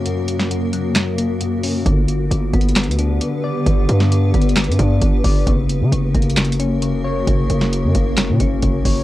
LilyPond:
<<
  \new Staff \with { instrumentName = "Ambient pad" } { \time 4/4 \key fis \phrygian \tempo 4 = 133 <cis ais fis' ais'>1 | <d b g' b'>1~ | <d b g' b'>1 | <cis ais fis' ais'>1~ |
<cis ais fis' ais'>1 | }
  \new Staff \with { instrumentName = "Synth keys" } { \clef bass \time 4/4 \key fis \phrygian <fis, ais cis'>4 fis,8 fis8 fis,8 ais8 fis,8 cis'8 | d4 d8 b8 d8 d'8 d8 d''8 | d4 d8 b8 d8 d'8 d8 d''8 | cis4 cis8 ais8 cis8 cis'8 cis8 cis''8 |
cis4 cis8 ais8 cis8 cis'8 cis8 cis''8 | }
  \new Staff \with { instrumentName = "808-style bass" } { \clef bass \time 4/4 \key fis \phrygian r1 | g,,4 g,,8 g,,8. d,8. r4 | g,,8 g,4 g,,8. g,16 g,8 g,,8 g,,8 | fis,,8. cis16 fis,,8 fis,,2~ fis,,8 |
fis,,8 fis,,8. fis,16 fis,,8. ais,16 fis,,8 fis,,8 fis,,8 | }
  \new DrumStaff \with { instrumentName = "Drums" } \drummode { \time 4/4 hh8 hh16 sn16 hh8 hh8 <hc hh sn>8 hh8 hh8 hho8 | <hh bd>8 hh8 \tuplet 3/2 { hh16 r16 r16 <hh bd>16 hh16 hh16 <hc hh sn>16 hh16 hh16 hh16 r16 r16 } hh4 | <hh bd>8 hh16 sn16 \tuplet 3/2 { hh16 r16 r16 <hh bd>16 hh16 hh16 <hc hh sn>16 hh16 hh16 <hh bd>16 r16 r16 } <hh bd>8 <hho bd>8 | <hh bd>8 hh8 \tuplet 3/2 { hh16 r16 r16 <hh bd>16 hh16 hh16 <hc hh sn>16 hh16 hh16 hh16 r16 r16 } hh4 |
<hh bd>8 hh16 sn16 hh8 <hh bd>8 <hc hh sn>8 <hh bd>8 <hh bd>8 <hho bd>8 | }
>>